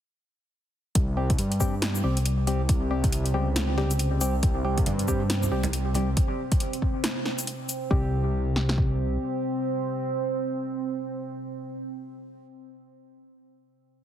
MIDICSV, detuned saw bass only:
0, 0, Header, 1, 2, 480
1, 0, Start_track
1, 0, Tempo, 434783
1, 1050, Time_signature, 4, 2, 24, 8
1, 15500, End_track
2, 0, Start_track
2, 0, Title_t, "Detuned saw bass"
2, 0, Program_c, 0, 39
2, 1051, Note_on_c, 0, 36, 94
2, 1515, Note_off_c, 0, 36, 0
2, 1531, Note_on_c, 0, 43, 99
2, 2235, Note_off_c, 0, 43, 0
2, 2250, Note_on_c, 0, 36, 93
2, 3675, Note_off_c, 0, 36, 0
2, 3688, Note_on_c, 0, 37, 101
2, 4634, Note_off_c, 0, 37, 0
2, 4647, Note_on_c, 0, 36, 97
2, 4873, Note_off_c, 0, 36, 0
2, 4890, Note_on_c, 0, 36, 100
2, 5355, Note_off_c, 0, 36, 0
2, 5366, Note_on_c, 0, 43, 98
2, 6073, Note_off_c, 0, 43, 0
2, 6088, Note_on_c, 0, 36, 95
2, 6794, Note_off_c, 0, 36, 0
2, 8731, Note_on_c, 0, 36, 98
2, 10126, Note_off_c, 0, 36, 0
2, 15500, End_track
0, 0, End_of_file